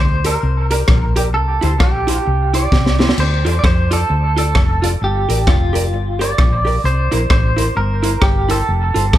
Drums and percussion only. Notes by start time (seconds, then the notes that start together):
0.24 closed hi-hat
0.71 closed hi-hat
0.88 kick, cross-stick
1.16 closed hi-hat
1.62 closed hi-hat
1.80 kick, cross-stick
2.08 closed hi-hat
2.54 closed hi-hat
2.72 kick, snare
2.86 snare
3.00 snare
3.09 snare
3.18 crash
3.46 closed hi-hat
3.64 kick, cross-stick
3.91 closed hi-hat
4.38 closed hi-hat
4.55 kick, cross-stick
4.84 closed hi-hat
5.30 closed hi-hat
5.47 kick, cross-stick
5.75 closed hi-hat
6.21 closed hi-hat
6.38 kick, cross-stick
6.67 open hi-hat
6.84 hi-hat pedal
7.12 closed hi-hat
7.30 kick, cross-stick
7.58 closed hi-hat
8.04 closed hi-hat
8.22 kick, cross-stick
8.50 closed hi-hat
8.96 closed hi-hat
9.13 kick, cross-stick